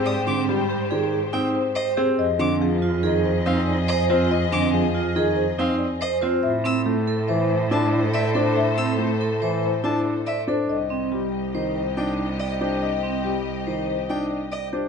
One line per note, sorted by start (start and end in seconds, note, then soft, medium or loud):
0.00 2.05 G#2 medium
0.00 0.12 C4 medium
0.00 0.12 G4 medium
0.00 1.93 G4 medium
0.00 0.12 G#4 medium
0.00 1.93 C5 medium
0.06 0.33 D5 medium
0.06 0.21 D#6 medium
0.27 0.54 D3 medium
0.27 0.54 C4 medium
0.27 0.43 D6 medium
0.49 0.76 G3 medium
0.49 0.76 G4 medium
0.69 0.97 G4 medium
0.91 1.18 D#3 medium
0.91 1.18 G#4 medium
0.91 1.18 D5 medium
1.14 1.40 G#4 medium
1.33 1.61 C4 medium
1.33 1.61 D#4 medium
1.33 1.49 G5 medium
1.55 1.82 C5 medium
1.75 2.03 C5 loud
1.75 1.91 D#5 medium
1.97 2.24 C4 loud
1.97 2.24 G4 medium
1.97 2.25 G#4 medium
2.18 6.31 F2 medium
2.18 6.19 G#4 medium
2.18 2.46 D#5 loud
2.18 6.19 D#5 medium
2.39 2.67 D3 medium
2.39 2.67 C4 medium
2.39 2.55 D6 medium
2.61 2.88 F3 medium
2.61 2.88 G#4 medium
2.82 3.09 F4 medium
3.03 3.31 D#3 medium
3.03 3.31 G#4 medium
3.03 3.31 D#5 medium
3.25 3.52 C5 medium
3.46 3.73 C4 loud
3.46 3.73 D#4 medium
3.46 3.62 F5 medium
3.68 3.95 D5 medium
3.88 4.16 C5 loud
3.88 4.04 D#5 loud
4.10 4.37 C4 medium
4.10 4.37 F4 medium
4.10 4.37 C5 loud
4.31 4.58 D#5 loud
4.52 4.80 D3 medium
4.52 4.80 C4 medium
4.52 4.68 D6 medium
4.73 5.01 F3 medium
4.73 5.01 G#4 medium
4.95 5.22 F4 medium
5.16 5.43 D#3 medium
5.16 5.44 G#4 medium
5.16 5.43 D#5 medium
5.36 5.64 C5 medium
5.59 5.86 C4 loud
5.59 5.86 D#4 medium
5.59 5.75 F5 medium
5.78 6.07 D5 medium
6.01 6.29 C5 loud
6.01 6.17 D#5 loud
6.21 6.50 C4 medium
6.21 6.50 F4 medium
6.21 6.50 C5 medium
6.43 10.56 A2 medium
6.43 10.44 A4 medium
6.43 10.44 C5 medium
6.43 6.71 E5 medium
6.64 6.92 C4 medium
6.64 6.81 E6 medium
6.86 7.14 A3 medium
6.86 7.14 A4 medium
7.07 7.35 A4 medium
7.28 7.56 E3 medium
7.28 7.56 C5 medium
7.28 7.56 E5 medium
7.50 7.77 C5 medium
7.71 7.99 D4 medium
7.71 7.99 E4 medium
7.71 7.87 A5 medium
7.92 8.20 D5 medium
8.14 8.41 D5 medium
8.14 8.30 E5 medium
8.35 8.63 D4 medium
8.35 8.62 A4 medium
8.35 8.63 C5 medium
8.56 8.84 E5 medium
8.77 9.05 C4 medium
8.77 8.93 E6 medium
8.99 9.26 A3 medium
8.99 9.27 A4 medium
9.21 9.48 A4 medium
9.42 9.69 E3 medium
9.42 9.69 C5 medium
9.42 9.69 E5 medium
9.63 9.90 C5 medium
9.84 10.11 D4 medium
9.84 10.11 E4 medium
9.84 10.00 A5 medium
10.06 10.33 D5 medium
10.26 10.54 D5 medium
10.26 10.42 E5 medium
10.47 10.75 D4 medium
10.47 10.75 A4 medium
10.47 10.76 C5 medium
10.68 14.82 C2 medium
10.68 14.69 G4 medium
10.68 14.69 D#5 medium
10.68 10.97 D#5 medium
10.90 11.18 C4 medium
11.12 11.39 G3 medium
11.12 11.39 G4 medium
11.55 11.82 D#3 medium
11.55 11.82 C5 medium
11.55 11.82 D#5 medium
11.76 12.03 C5 medium
11.97 12.24 D4 medium
11.97 12.24 D#4 medium
11.97 12.13 G5 medium
12.18 12.46 D5 medium
12.39 12.67 D5 medium
12.39 12.55 D#5 medium
12.61 12.88 D4 medium
12.61 12.88 G4 medium
12.61 12.88 C5 medium
12.82 13.09 D#5 medium
13.03 13.31 C4 medium
13.24 13.52 G3 medium
13.24 13.52 G4 medium
13.67 13.95 D#3 medium
13.67 13.94 C5 medium
13.67 13.95 D#5 medium
13.89 14.16 C5 medium
14.09 14.37 D4 medium
14.09 14.37 D#4 medium
14.09 14.25 G5 medium
14.31 14.58 D5 medium
14.51 14.79 D5 medium
14.51 14.68 D#5 medium
14.73 14.88 D4 medium
14.73 14.88 G4 medium
14.73 14.88 C5 medium